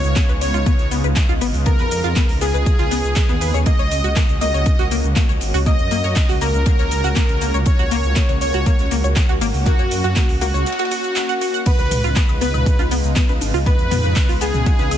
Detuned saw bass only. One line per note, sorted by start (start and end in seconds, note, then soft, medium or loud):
0.04 0.14 C#2 medium
0.29 0.39 C#2 medium
0.41 0.52 C#2 loud
0.54 0.64 C#2 loud
0.79 0.89 C#2 medium
0.91 1.02 C#2 loud
1.04 1.14 C#2 medium
1.29 1.39 C#2 medium
1.41 1.52 G#1 loud
1.54 1.81 C#2 medium
1.79 1.89 F2 medium
1.91 2.02 F2 loud
2.04 2.14 F2 loud
2.29 2.39 C#2 medium
2.41 2.52 C#2 loud
2.54 2.64 C#2 medium
2.79 2.89 C#2 medium
2.91 3.02 C#2 loud
3.04 3.14 C#2 medium
3.29 3.39 D#2 medium
3.41 3.52 D#2 loud
3.54 3.64 D#2 medium
3.79 3.89 C#2 medium
3.91 4.02 C#2 loud
4.04 4.14 C#2 medium
4.29 4.39 C#2 medium
4.41 4.52 C#2 loud
4.54 4.64 C#2 medium
4.79 4.89 C#2 medium
4.91 5.02 C#2 medium
5.04 5.14 C#2 medium
5.29 5.39 C#2 medium
5.41 5.52 G#1 loud
5.54 5.81 C#2 loud
5.79 5.89 F#2 medium
5.91 6.02 F#2 loud
6.04 6.14 F#2 medium
6.29 6.39 C#2 medium
6.41 6.52 C#2 loud
6.54 6.64 C#2 loud
6.79 6.89 C#2 medium
6.91 7.02 C#2 loud
7.04 7.14 C#2 medium
7.29 7.39 C#2 medium
7.41 7.52 C#2 loud
7.54 7.64 C#2 medium
7.79 7.89 C#2 medium
7.91 8.02 C#2 loud
8.04 8.14 C#2 loud
8.29 8.39 C#2 medium
8.41 8.52 C#2 loud
8.54 8.64 C#2 loud
8.79 8.89 C#2 medium
8.91 9.02 C#2 loud
9.04 9.14 C#2 medium
9.29 9.39 C#2 medium
9.41 9.52 G#1 loud
9.54 9.81 C#2 medium
9.79 9.89 F#2 medium
9.91 10.02 F#2 loud
10.04 10.14 F#2 loud
10.29 10.39 C#2 medium
10.41 10.52 C#2 loud
10.54 10.64 C#2 medium
11.79 11.89 C#2 medium
11.91 12.02 C#2 loud
12.04 12.14 C#2 loud
12.29 12.39 C#2 medium
12.41 12.52 C#2 loud
12.54 12.64 C#2 loud
12.79 12.89 C#2 medium
12.91 13.02 C#2 loud
13.04 13.14 C#2 medium
13.29 13.39 C#2 medium
13.41 13.52 G#1 loud
13.54 13.81 C#2 loud
13.79 13.89 F2 medium
13.91 14.02 F2 loud
14.04 14.14 F2 medium
14.29 14.39 C#2 medium
14.41 14.52 C#2 loud
14.54 14.64 C#2 loud
14.79 14.89 C#2 medium
14.91 14.98 C#2 loud